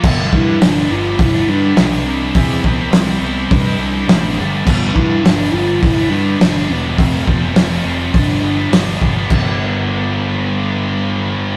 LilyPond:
<<
  \new Staff \with { instrumentName = "Soft synth lead" } { \time 4/4 \key g \mixolydian \tempo 4 = 104 b8 e'8 d'8 f'8 e'8 d'4 d'8 | c'8 b8 c'8 b8 d'4. r8 | b8 e'8 d'8 f'8 e'8 d'4 b8 | c'8 b8 c'4 d'4 r4 |
b1 | }
  \new Staff \with { instrumentName = "Distorted electric guitar" } { \time 4/4 \key g \mixolydian <g, d g b d'>8 <d g b d'>16 <g b d'>8. <d g b d'>16 <g b d'>8 <g b d'>16 <d g b d'>16 <g b d'>16 <g, d g b d'>8 <c g c' e'>16 <g c' e'>16 | <c g c' e'>8 <c g c' e'>16 <g c' e'>8. <c g c' e'>16 <g c' e'>8 <g c' e'>16 <c g c' e'>16 <g c' e'>16 <c g c' e'>8 <g, d g b d'>16 <g b d'>16 | <g, d g b d'>8 <d g b d'>16 <g b d'>8. <d g b d'>16 <g b d'>8 <g b d'>16 <d g b d'>16 <g b d'>16 <g, d g b d'>8 <d g b d'>16 <g b d'>16 | <f, c f a c'>8 <c f a c'>16 <f a c'>8. <c f a c'>16 <f a c'>16 <g, d g b d'>16 <g b d'>16 <d g b d'>16 <g b d'>16 <g, d g b d'>8 <d g b d'>16 <g b d'>16 |
<g, d g b d'>1 | }
  \new Staff \with { instrumentName = "Picked electric bass" } { \clef bass \time 4/4 \key g \mixolydian g,,8 g,8 g,,8 g,,8 g,,8 g,8 b,,8 c,8 | e,8 c,8 c,8 c,8 g,8 c,8 a,,8 g,,8 | g,,8 g,8 g,,8 g,,8 g,,8 g,8 g,,8 e,,8 | f,,8 f,,8 f,,8 f,,8 g,,8 g,,8 g,,8 g,,8 |
g,,1 | }
  \new DrumStaff \with { instrumentName = "Drums" } \drummode { \time 4/4 <cymc bd>8 bd8 <hho sn>4 <hho bd>4 <hho sn>4 | <hho bd>8 bd8 <hho sn>4 <hho bd>4 <hho sn>4 | <cymc bd>8 bd8 <hho sn>4 <hho bd>4 <hho sn>4 | <hho bd>8 bd8 <hho sn>4 <hho bd>4 <hho sn>8 bd8 |
<cymc bd>4 r4 r4 r4 | }
>>